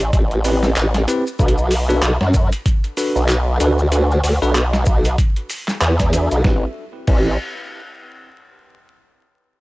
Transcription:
0.00 0.11 A1 loud
0.00 closed hi-hat medium
0.00 maracas soft
0.13 0.74 A1 loud
0.13 kick loud
0.13 closed hi-hat medium
0.13 maracas soft
0.31 closed hi-hat soft
0.44 0.68 C4 loud
0.44 0.68 E4 medium
0.44 0.68 G4 medium
0.44 0.68 B4 loud
0.44 open hi-hat medium
0.44 maracas loud
0.63 snare soft
0.63 maracas soft
0.76 1.06 A1 loud
0.76 clap loud
0.76 closed hi-hat medium
0.76 maracas medium
0.94 snare soft
0.94 closed hi-hat medium
1.08 1.23 C4 loud
1.08 1.23 E4 medium
1.08 1.23 G4 medium
1.08 1.23 B4 loud
1.08 closed hi-hat medium
1.08 maracas medium
1.27 maracas soft
1.39 2.00 B1 loud
1.39 1.55 D4 medium
1.39 1.55 F#4 medium
1.39 1.55 A4 medium
1.39 1.55 B4 medium
1.39 kick loud
1.39 maracas medium
1.48 closed hi-hat medium
1.58 maracas soft
1.71 open hi-hat medium
1.71 maracas medium
1.89 2.00 D4 loud
1.89 2.00 F#4 medium
1.89 2.00 A4 medium
1.89 2.00 B4 loud
1.89 maracas soft
2.02 2.18 B1 loud
2.02 clap loud
2.02 closed hi-hat medium
2.02 maracas soft
2.21 2.49 F#2 loud
2.21 snare medium
2.34 kick loud
2.34 maracas loud
2.52 closed hi-hat medium
2.52 maracas soft
2.66 kick loud
2.66 closed hi-hat medium
2.66 maracas medium
2.84 closed hi-hat soft
2.97 3.20 D4 medium
2.97 3.20 F#4 medium
2.97 3.20 A4 medium
2.97 3.20 B4 loud
2.97 open hi-hat medium
2.97 maracas medium
3.16 3.58 B1 loud
3.16 maracas soft
3.28 clap loud
3.28 closed hi-hat medium
3.28 maracas soft
3.60 4.22 D2 loud
3.60 3.76 D4 loud
3.60 3.76 F#4 medium
3.60 3.76 A4 medium
3.60 3.76 B4 loud
3.60 closed hi-hat medium
3.60 maracas medium
3.79 maracas soft
3.92 4.08 D4 medium
3.92 4.08 F#4 medium
3.92 4.08 A4 medium
3.92 4.08 B4 medium
3.92 closed hi-hat medium
3.92 maracas medium
4.11 maracas soft
4.23 4.39 D2 loud
4.23 open hi-hat medium
4.23 maracas medium
4.42 4.85 B1 medium
4.42 4.53 D4 loud
4.42 4.53 F#4 medium
4.42 4.53 A4 medium
4.42 4.53 B4 loud
4.42 maracas soft
4.55 clap loud
4.55 closed hi-hat medium
4.55 maracas medium
4.73 snare medium
4.73 maracas soft
4.86 5.16 B1 loud
4.86 kick loud
4.86 maracas medium
5.05 closed hi-hat medium
5.05 maracas soft
5.18 kick loud
5.18 closed hi-hat medium
5.18 maracas soft
5.36 closed hi-hat soft
5.50 open hi-hat medium
5.50 maracas loud
5.68 clap soft
5.68 snare soft
5.68 maracas soft
5.81 6.28 E2 medium
5.81 clap loud
5.81 closed hi-hat medium
5.81 maracas soft
6.00 kick medium
6.00 snare soft
6.00 closed hi-hat medium
6.00 maracas soft
6.13 6.36 D4 medium
6.13 6.36 F#4 medium
6.13 6.36 A4 medium
6.13 6.36 E5 medium
6.13 closed hi-hat medium
6.13 maracas medium
6.31 6.43 B1 loud
6.31 closed hi-hat soft
6.31 maracas soft
6.44 6.64 C4 medium
6.44 6.64 E4 medium
6.44 6.64 G4 medium
6.44 6.64 B4 medium
6.44 kick loud
6.44 snare medium
7.07 7.37 A1 loud
7.07 7.32 C4 medium
7.07 7.32 E4 medium
7.07 7.32 G4 medium
7.07 7.32 B4 loud
7.07 kick loud
7.07 crash medium

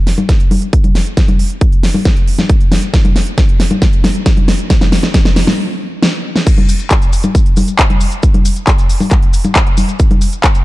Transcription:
0.07 snare soft
0.07 open hi-hat loud
0.18 closed hi-hat soft
0.18 high conga medium
0.29 kick loud
0.29 snare medium
0.29 closed hi-hat medium
0.40 closed hi-hat soft
0.51 open hi-hat loud
0.51 high conga medium
0.62 closed hi-hat soft
0.73 kick loud
0.73 closed hi-hat medium
0.84 closed hi-hat soft
0.84 high conga medium
0.95 snare medium
0.95 open hi-hat loud
1.06 closed hi-hat soft
1.17 kick loud
1.17 snare medium
1.17 closed hi-hat medium
1.28 closed hi-hat soft
1.28 high conga medium
1.39 open hi-hat loud
1.50 closed hi-hat soft
1.61 kick loud
1.61 closed hi-hat medium
1.72 closed hi-hat soft
1.83 snare medium
1.83 open hi-hat loud
1.94 open hi-hat medium
1.94 high conga medium
2.05 kick loud
2.05 snare medium
2.05 closed hi-hat medium
2.17 closed hi-hat soft
2.27 open hi-hat loud
2.39 snare medium
2.39 closed hi-hat soft
2.39 high conga medium
2.49 kick loud
2.49 closed hi-hat medium
2.61 closed hi-hat soft
2.72 snare medium
2.72 open hi-hat loud
2.72 high conga medium
2.83 closed hi-hat soft
2.94 kick loud
2.94 snare medium
2.94 closed hi-hat medium
3.05 closed hi-hat soft
3.05 high conga medium
3.16 snare medium
3.16 open hi-hat loud
3.27 closed hi-hat soft
3.38 kick loud
3.38 snare medium
3.38 closed hi-hat medium
3.49 closed hi-hat soft
3.60 snare medium
3.60 open hi-hat loud
3.71 closed hi-hat soft
3.71 high conga medium
3.82 kick loud
3.82 snare medium
3.82 closed hi-hat medium
3.93 closed hi-hat soft
4.04 snare medium
4.04 open hi-hat loud
4.04 high conga medium
4.15 closed hi-hat soft
4.26 kick loud
4.26 snare medium
4.26 closed hi-hat medium
4.37 closed hi-hat soft
4.37 high conga medium
4.48 snare medium
4.48 open hi-hat loud
4.59 closed hi-hat soft
4.70 kick loud
4.70 snare medium
4.70 closed hi-hat medium
4.81 snare medium
4.81 closed hi-hat soft
4.81 high conga medium
4.92 snare loud
4.92 open hi-hat loud
5.03 snare medium
5.03 closed hi-hat soft
5.14 kick loud
5.14 snare loud
5.14 closed hi-hat medium
5.25 snare medium
5.25 closed hi-hat soft
5.36 snare loud
5.36 open hi-hat loud
5.47 snare medium
5.47 open hi-hat medium
5.47 high conga medium
6.03 snare loud
6.36 snare medium
6.47 kick loud
6.47 closed hi-hat medium
6.47 crash loud
6.47 maracas medium
6.58 closed hi-hat soft
6.58 high conga medium
6.69 open hi-hat loud
6.69 maracas loud
6.80 closed hi-hat soft
6.80 maracas soft
6.91 kick loud
6.91 clap loud
6.91 closed hi-hat medium
6.91 maracas medium
7.02 closed hi-hat soft
7.02 maracas soft
7.13 open hi-hat loud
7.13 maracas loud
7.23 closed hi-hat soft
7.23 high conga medium
7.23 maracas soft
7.35 kick loud
7.35 closed hi-hat medium
7.35 maracas medium
7.46 closed hi-hat soft
7.57 open hi-hat loud
7.57 high conga medium
7.57 maracas medium
7.68 closed hi-hat soft
7.68 maracas soft
7.79 kick loud
7.79 clap loud
7.79 closed hi-hat medium
7.79 maracas soft
7.90 closed hi-hat soft
7.90 high conga medium
8.01 open hi-hat loud
8.01 maracas medium
8.11 closed hi-hat soft
8.11 maracas soft
8.23 kick loud
8.23 closed hi-hat medium
8.23 maracas medium
8.34 closed hi-hat soft
8.34 high conga medium
8.45 open hi-hat loud
8.45 maracas medium
8.56 closed hi-hat soft
8.56 maracas soft
8.67 kick loud
8.67 clap loud
8.67 closed hi-hat medium
8.67 maracas medium
8.78 closed hi-hat soft
8.78 maracas soft
8.89 open hi-hat loud
8.89 maracas medium
9.00 open hi-hat medium
9.00 high conga medium
9.00 maracas soft
9.11 kick loud
9.11 clap medium
9.11 closed hi-hat medium
9.11 maracas medium
9.22 closed hi-hat soft
9.33 open hi-hat loud
9.33 maracas loud
9.44 closed hi-hat soft
9.44 high conga medium
9.44 maracas soft
9.55 kick loud
9.55 clap loud
9.55 closed hi-hat medium
9.55 maracas medium
9.67 closed hi-hat soft
9.77 open hi-hat loud
9.77 high conga medium
9.77 maracas loud
9.89 closed hi-hat soft
9.89 maracas soft
9.99 kick loud
9.99 closed hi-hat medium
9.99 maracas medium
10.11 closed hi-hat soft
10.11 high conga medium
10.21 open hi-hat loud
10.21 maracas loud
10.33 closed hi-hat soft
10.33 maracas soft
10.43 kick loud
10.43 clap loud
10.43 closed hi-hat medium
10.43 maracas medium
10.54 closed hi-hat soft
10.54 maracas soft

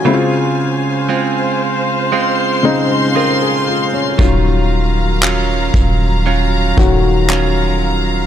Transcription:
0.00 0.15 F#3 medium
0.00 1.09 C#4 medium
0.00 0.29 F#4 medium
0.00 2.08 G#5 medium
0.05 1.34 C#3 medium
0.05 4.18 C#3 medium
0.05 1.35 G#3 medium
0.05 1.35 C4 medium
0.05 0.12 E4 medium
0.05 1.09 F4 medium
0.05 4.15 C5 medium
0.05 8.27 F5 medium
0.14 1.39 F4 medium
1.09 2.11 G#3 medium
1.09 2.11 C4 medium
1.09 2.13 F4 medium
2.12 3.14 G#3 medium
2.12 3.15 C4 medium
2.12 3.16 F4 medium
2.12 4.17 C6 medium
2.63 3.60 C#3 medium
2.63 3.61 G#3 medium
2.63 3.16 C4 medium
2.63 3.16 D#4 medium
3.15 4.29 G#3 medium
3.15 4.29 C4 medium
3.15 4.19 F4 medium
3.15 3.40 A#4 medium
3.42 3.66 G#4 medium
3.68 3.92 F4 medium
3.93 4.18 C#4 medium
4.18 5.70 D#1 loud
4.18 5.48 D#3 medium
4.18 8.27 D#3 medium
4.18 5.48 F#3 medium
4.18 8.27 F#3 medium
4.18 5.49 C#4 medium
4.18 5.23 F4 medium
4.18 5.49 F4 medium
4.18 8.27 A#5 medium
4.18 kick loud
5.23 6.25 F#3 medium
5.23 6.26 C#4 medium
5.23 6.27 F4 medium
5.23 clap medium
5.74 6.73 D#1 loud
5.74 kick medium
6.26 7.28 F#3 medium
6.26 7.29 C#4 medium
6.26 7.30 F4 medium
6.77 8.27 D#1 loud
6.77 7.74 D#3 medium
6.77 7.75 F#3 medium
6.77 7.75 C#4 medium
6.77 7.75 F#4 medium
6.77 kick medium
7.29 8.27 F#3 medium
7.29 8.27 C#4 medium
7.29 8.27 F4 medium
7.29 clap medium

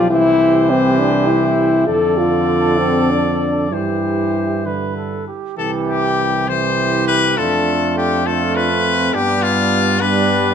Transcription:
0.00 0.12 B1 medium
0.00 0.13 F3 medium
0.10 1.88 C2 medium
0.10 1.88 E3 medium
0.10 0.72 E4 loud
0.10 1.84 G4 medium
0.10 1.85 C5 medium
0.70 1.01 C4 loud
0.99 1.30 D4 loud
1.29 1.89 E4 loud
1.87 3.73 F2 medium
1.87 3.69 D3 medium
1.87 2.19 A4 loud
1.87 3.68 A4 medium
1.87 3.74 D5 medium
2.18 2.80 F4 loud
2.79 3.12 C4 medium
3.10 3.72 D4 medium
3.72 5.28 G2 medium
3.72 4.68 E3 medium
3.72 5.25 E4 medium
3.72 4.64 G4 medium
3.72 4.68 C5 medium
4.66 5.28 D3 soft
4.66 4.95 B4 medium
4.66 5.28 B4 medium
4.97 5.27 A4 medium
5.28 5.57 G4 soft
5.58 7.34 C2 medium
5.58 6.45 E3 medium
5.58 6.45 E4 medium
5.58 6.31 G4 medium
5.58 5.71 A4 medium
5.88 6.50 G4 loud
6.48 7.40 E3 medium
6.48 7.36 E4 medium
6.48 7.40 G4 medium
6.48 7.07 C5 loud
7.08 7.39 B4 loud
7.37 9.10 F2 medium
7.37 8.26 A3 medium
7.37 8.25 D4 medium
7.37 8.26 F4 medium
7.37 7.97 A4 loud
7.97 8.28 G4 loud
8.26 9.16 A3 medium
8.26 8.72 D4 medium
8.26 9.15 F4 medium
8.26 8.57 A4 loud
8.56 9.16 B4 loud
8.71 9.15 C4 medium
9.14 10.54 G2 medium
9.14 10.00 G3 medium
9.14 10.00 B3 medium
9.14 10.00 D4 medium
9.14 9.44 G4 loud
9.42 10.02 F4 loud
10.01 10.54 G3 medium
10.01 10.54 B3 medium
10.01 10.54 D4 medium
10.01 10.54 B4 loud

